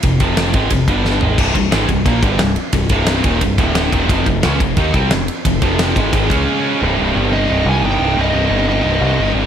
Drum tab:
CC |--------|x-------|--------|--------|
RD |xxxxxx--|-xxxxxxx|xxxxxxxx|xxxxxxxx|
SD |--o---o-|--o---o-|--o---o-|--o---o-|
FT |-------o|--------|--------|--------|
BD |oo-ooo--|oo-ooo--|oo-ooo-o|oo-ooo--|

CC |--------|--------|--------|
RD |xxxxxx--|--------|--------|
SD |--o-----|--------|--------|
FT |--------|--------|--------|
BD |oo-ooo--|--------|--------|